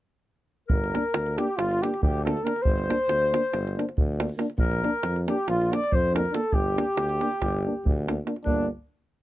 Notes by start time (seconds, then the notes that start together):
0.68 G1 A#4, davul low
0.84 davul high
0.94 A#3 D4, davul high
1.14 D2, davul high
1.26 davul high
1.38 A#3 D4 G4, davul high
1.57 G1 F4, davul high
1.71 davul high
1.82 A#3 D4 G4, davul high
1.94 davul high
2.02 D2 G4, davul low
2.24 A#3 D4 A4, davul high
2.37 davul high
2.44 A#3 D4 A#4, davul high
2.56 davul high
2.62 G1 C5, davul low
2.79 davul high
2.88 A#3 D4, davul high
3.09 D2, davul high
3.22 davul high
3.33 A#3 D4, davul high
3.53 G1, davul high
3.67 davul high
3.77 A#3 D4, davul high
3.89 davul high
3.98 D2, davul low
4.19 A#3 D4, davul high
4.29 davul high
4.38 A#3 D4, davul high
4.50 davul high
4.58 A#1 A#4, davul low
4.71 davul high
4.82 A#3 D4, davul high
5.03 F2, davul high
5.16 davul high
5.27 A#3 D4 G4, davul high
5.47 A#1 F4, davul high
5.62 davul high
5.71 A#3 D4 D5, davul high
5.84 davul high
5.92 F2 C5, davul low
6.13 A#3 D4 A#4, davul high
6.25 davul high
6.31 A#3 D4 A4, davul high
6.44 davul high
6.52 G1 G4, davul low
6.76 A#3 D4, davul high
6.97 D2, davul high
7.09 davul high
7.20 A#3 D4, davul high
7.31 davul high
7.41 G1, davul high, davul low
7.65 A#3 D4
7.86 D2, davul low
8.07 A#3 D4, davul high
8.26 A#3 D4, davul high
8.36 davul high
8.44 G1 A#3 D4, davul low